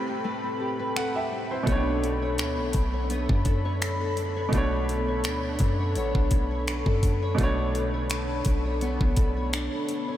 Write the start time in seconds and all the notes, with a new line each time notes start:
Already playing: A2 G3 A3 C4 G4 A4 B4 G5 B5
0.08 B4
0.24 A3 B4
0.44 C4
0.60 G4
0.79 B4
0.96 C4 A4 F#5, finger snap
1.15 G4 E5
1.32 C4
1.51 E4 B4 C5
1.63 B2 A3 B3 D4, kick, closed hi-hat
1.67 B1 C#4 C#5
1.72 D4 C#5
1.86 D4
2.03 A4, closed hi-hat
2.22 C#5
2.38 D2 D4, finger snap, closed hi-hat
2.58 B1 A4
2.73 B1 D4, kick, closed hi-hat
2.94 C#5
3.10 B3 C#5, closed hi-hat
3.29 F#2 D4, kick
3.45 A4, kick, closed hi-hat
3.65 C#5
3.81 D4, finger snap, closed hi-hat
4.01 A4
4.17 D4, closed hi-hat
4.36 C#5
4.49 B2 A3, kick, closed hi-hat
4.53 B1 B3 D4 C#5
4.57 C#5
4.72 D4
4.89 A4, closed hi-hat
5.08 C#5
5.24 D2 D4, finger snap, closed hi-hat
5.44 A4
5.59 F#2 D4, kick, closed hi-hat
5.79 C#5
5.96 A1 B3 C#5, closed hi-hat
6.15 B1 D4, kick
6.31 A4, kick, closed hi-hat
6.51 C#5
6.67 D4, finger snap, closed hi-hat
6.86 F#2 A4, kick
7.03 D4, kick, closed hi-hat
7.22 C#5
7.35 B2 A3, kick, closed hi-hat
7.39 B1 B3 D4 C#5
7.43 C#5
7.58 D4
7.74 A4, closed hi-hat
7.94 C#5
8.10 D4, finger snap, closed hi-hat
8.29 A4
8.45 B1 D4, kick, closed hi-hat
8.65 C#5
8.81 B3 C#5, closed hi-hat
9.01 B1 D4, kick
9.16 A4, kick, closed hi-hat
9.37 C#5
9.53 D4, finger snap, closed hi-hat
9.72 A4
9.89 D4, closed hi-hat
10.08 C#5